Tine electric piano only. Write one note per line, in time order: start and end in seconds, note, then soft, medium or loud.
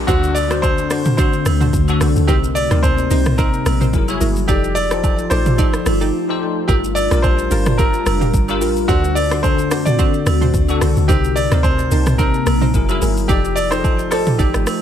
0.00 0.08 D4 medium
0.00 0.10 F4 medium
0.00 0.10 G4 loud
0.08 0.42 D3 medium
0.08 0.42 D4 medium
0.08 0.42 F#4 medium
0.08 0.42 C5 medium
0.51 0.83 D3 medium
0.51 0.83 D4 medium
0.51 0.84 F#4 medium
0.51 0.84 C5 medium
0.90 1.68 D3 medium
0.90 1.68 D4 medium
0.90 1.69 F#4 medium
0.90 1.69 C5 medium
1.88 2.21 D3 medium
1.88 2.21 D4 medium
1.88 2.21 F#4 medium
1.88 2.22 A4 loud
2.28 2.62 C3 medium
2.28 2.62 C4 medium
2.28 2.62 D#4 medium
2.28 2.63 A#4 medium
2.71 3.03 C3 medium
2.71 3.04 C4 medium
2.71 3.04 D#4 medium
2.71 3.04 A#4 medium
3.11 3.88 C3 medium
3.11 3.89 C4 medium
3.11 3.89 D#4 medium
3.11 3.89 C5 medium
3.93 4.05 F#3 medium
3.93 4.06 E4 medium
3.93 4.06 G#4 medium
3.93 4.06 A#4 medium
4.08 4.41 F#3 medium
4.08 4.41 E4 medium
4.08 4.41 G#4 medium
4.08 4.42 C#5 loud
4.48 4.82 F3 medium
4.48 4.82 D#4 medium
4.48 4.82 G4 medium
4.48 4.83 A4 medium
4.48 4.83 D5 medium
4.91 5.23 F3 medium
4.91 5.24 D#4 medium
4.91 5.24 G4 medium
4.91 5.24 A4 medium
4.91 5.24 C5 medium
5.31 6.08 F3 medium
5.31 6.09 D#4 medium
5.31 6.09 G4 medium
5.31 6.09 A4 medium
5.31 6.09 D5 medium
6.28 6.61 F3 medium
6.28 6.61 D#4 medium
6.28 6.62 G4 medium
6.28 6.62 A4 medium
6.28 6.62 C5 loud
6.68 7.02 G3 medium
6.68 7.02 D4 medium
6.68 7.03 F4 medium
6.68 7.03 A#4 medium
7.11 7.44 G3 medium
7.11 7.44 D4 medium
7.11 7.44 F4 medium
7.11 7.45 A#4 medium
7.51 8.29 G3 medium
7.51 8.29 D4 medium
7.51 8.29 F4 medium
7.51 8.30 A5 medium
8.49 8.81 G3 medium
8.49 8.82 D4 medium
8.49 8.82 F4 medium
8.49 8.82 A#4 loud
8.89 9.22 D3 medium
8.89 9.23 D4 medium
8.89 9.23 F#4 medium
8.89 9.23 C5 medium
9.31 9.64 D3 medium
9.31 9.64 D4 medium
9.31 9.64 F#4 medium
9.31 9.65 A4 medium
9.71 10.49 D3 medium
9.71 10.49 D4 medium
9.71 10.49 F#4 medium
9.71 10.50 D5 medium
10.69 11.01 D3 medium
10.69 11.02 D4 medium
10.69 11.02 F#4 medium
10.69 11.02 A4 loud
11.09 11.42 C3 medium
11.09 11.43 C4 medium
11.09 11.43 D#4 medium
11.09 11.43 A#4 medium
11.51 11.84 C3 medium
11.51 11.84 C4 medium
11.51 11.85 D#4 medium
11.51 11.85 A#4 medium
11.91 12.69 C3 medium
11.91 12.69 C4 medium
11.91 12.70 D#4 medium
11.91 12.70 A5 medium
12.74 12.86 F#3 medium
12.74 12.86 E4 medium
12.74 12.87 G#4 medium
12.74 12.87 A#4 medium
12.89 13.22 F#3 medium
12.89 13.22 E4 medium
12.89 13.22 G#4 medium
12.89 13.22 A#4 loud
13.29 13.63 F3 medium
13.29 13.63 D#4 medium
13.29 13.63 G4 medium
13.29 13.63 A4 medium
13.29 13.63 D5 medium
13.72 14.04 F3 medium
13.72 14.04 D#4 medium
13.72 14.05 G4 medium
13.72 14.05 A4 medium
13.72 14.05 D#5 medium
14.11 14.82 F3 medium
14.11 14.82 D#4 medium
14.11 14.82 G4 medium
14.11 14.82 A4 medium
14.11 14.82 C5 medium